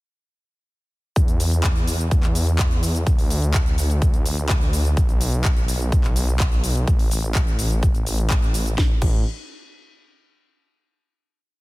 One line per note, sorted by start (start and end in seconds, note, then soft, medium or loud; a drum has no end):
1.16 3.04 E2 medium
1.16 kick loud
1.16 closed hi-hat medium
1.16 shaker soft
1.28 closed hi-hat soft
1.28 shaker soft
1.40 open hi-hat loud
1.40 shaker medium
1.52 closed hi-hat soft
1.52 shaker soft
1.64 kick loud
1.64 clap loud
1.64 closed hi-hat medium
1.64 shaker soft
1.76 closed hi-hat soft
1.76 shaker soft
1.87 open hi-hat loud
1.87 shaker medium
1.99 closed hi-hat soft
1.99 shaker soft
2.11 kick loud
2.11 closed hi-hat medium
2.11 shaker soft
2.23 clap soft
2.23 closed hi-hat soft
2.23 shaker soft
2.35 open hi-hat loud
2.35 shaker medium
2.47 closed hi-hat soft
2.47 shaker soft
2.59 kick loud
2.59 clap loud
2.59 closed hi-hat medium
2.59 shaker soft
2.71 closed hi-hat soft
2.71 shaker soft
2.83 open hi-hat loud
2.83 shaker medium
2.95 closed hi-hat soft
2.95 shaker soft
3.07 4.95 D2 medium
3.07 kick loud
3.07 closed hi-hat medium
3.07 shaker soft
3.19 open hi-hat medium
3.19 shaker soft
3.30 open hi-hat loud
3.30 shaker medium
3.42 closed hi-hat soft
3.42 shaker soft
3.54 kick loud
3.54 clap loud
3.54 closed hi-hat medium
3.54 shaker soft
3.66 closed hi-hat soft
3.66 shaker soft
3.78 open hi-hat loud
3.78 shaker medium
3.90 closed hi-hat soft
3.90 shaker soft
4.02 kick loud
4.02 closed hi-hat medium
4.02 shaker soft
4.14 closed hi-hat soft
4.14 shaker soft
4.26 open hi-hat loud
4.26 shaker medium
4.38 closed hi-hat soft
4.38 shaker soft
4.49 kick loud
4.49 clap loud
4.49 closed hi-hat medium
4.49 shaker soft
4.61 closed hi-hat soft
4.61 shaker soft
4.73 open hi-hat loud
4.73 shaker medium
4.85 closed hi-hat soft
4.85 shaker soft
4.97 6.85 B1 medium
4.97 kick loud
4.97 closed hi-hat medium
4.97 shaker soft
5.09 closed hi-hat soft
5.09 shaker soft
5.21 open hi-hat loud
5.21 shaker medium
5.33 closed hi-hat soft
5.33 shaker soft
5.45 kick loud
5.45 clap loud
5.45 closed hi-hat medium
5.45 shaker soft
5.57 closed hi-hat soft
5.57 shaker soft
5.68 open hi-hat loud
5.68 shaker medium
5.80 closed hi-hat soft
5.80 shaker soft
5.92 kick loud
5.92 closed hi-hat medium
5.92 shaker soft
6.04 clap soft
6.04 closed hi-hat soft
6.04 shaker soft
6.16 open hi-hat loud
6.16 shaker medium
6.28 closed hi-hat soft
6.28 shaker soft
6.40 kick loud
6.40 clap loud
6.40 closed hi-hat medium
6.40 shaker soft
6.52 closed hi-hat soft
6.52 shaker soft
6.64 open hi-hat loud
6.64 shaker medium
6.76 closed hi-hat soft
6.76 shaker soft
6.87 8.76 A1 medium
6.87 kick loud
6.87 closed hi-hat medium
6.87 shaker soft
6.99 open hi-hat medium
6.99 shaker soft
7.11 open hi-hat loud
7.11 shaker medium
7.23 closed hi-hat soft
7.23 shaker soft
7.35 kick loud
7.35 clap loud
7.35 closed hi-hat medium
7.35 shaker soft
7.47 closed hi-hat soft
7.47 shaker soft
7.59 open hi-hat loud
7.59 shaker medium
7.71 closed hi-hat soft
7.71 shaker soft
7.83 kick loud
7.83 closed hi-hat medium
7.83 shaker soft
7.95 closed hi-hat soft
7.95 shaker soft
8.07 open hi-hat loud
8.07 shaker medium
8.19 closed hi-hat soft
8.19 shaker soft
8.30 kick loud
8.30 clap loud
8.30 closed hi-hat medium
8.30 shaker soft
8.42 closed hi-hat soft
8.42 shaker soft
8.54 open hi-hat loud
8.54 shaker medium
8.66 closed hi-hat soft
8.66 shaker soft
8.78 8.91 A1 loud
8.78 kick loud
8.78 snare medium
9.02 9.24 A1 loud
9.02 kick loud
9.02 crash medium